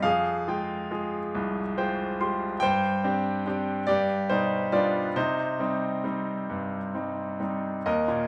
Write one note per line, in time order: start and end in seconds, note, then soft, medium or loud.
0.02 2.58 F2 medium
0.02 0.90 G#4 medium
0.02 2.15 F5 medium
0.48 0.89 G#3 soft
0.48 0.90 F4 soft
0.48 1.18 G5 soft
0.91 1.60 G#3 soft
0.91 1.60 F4 soft
0.91 1.60 G#4 soft
1.35 2.58 C2 medium
1.77 2.19 G#3 soft
1.77 2.19 F4 soft
1.77 2.17 C5 medium
1.77 2.45 G5 soft
2.20 2.54 G#3 soft
2.20 2.54 F4 soft
2.20 2.54 G4 soft
2.20 2.59 C6 medium
2.60 3.84 G2 medium
2.60 3.42 C5 medium
2.60 3.41 G5 medium
3.04 3.45 C4 soft
3.04 3.45 D4 soft
3.04 3.46 G4 soft
3.46 3.80 C4 soft
3.46 3.80 D4 soft
3.46 3.80 G4 soft
3.87 5.12 G2 medium
3.87 4.27 G4 medium
3.87 4.29 D5 medium
4.30 4.99 B2 soft
4.30 4.71 G3 soft
4.30 4.70 D#4 medium
4.30 4.74 C5 medium
4.30 4.71 D5 soft
4.72 5.07 G3 soft
4.72 5.07 B3 soft
4.72 5.08 D4 soft
4.72 5.13 F4 medium
4.72 5.17 D5 medium
5.16 7.82 C3 medium
5.16 5.59 D#4 medium
5.16 6.92 C5 medium
5.60 6.02 G3 soft
5.60 6.03 C4 soft
5.60 6.03 D#4 soft
6.04 6.77 G3 soft
6.04 6.77 C4 soft
6.04 6.78 D#4 soft
6.50 7.82 G2 soft
6.94 7.39 G3 soft
6.94 7.38 C4 soft
6.94 7.39 D#4 soft
7.40 7.77 G3 soft
7.40 7.77 C4 soft
7.40 7.77 D#4 soft
7.86 8.27 D#2 medium
7.86 8.27 A#4 medium
7.86 8.27 D#5 medium
8.08 8.27 A#2 soft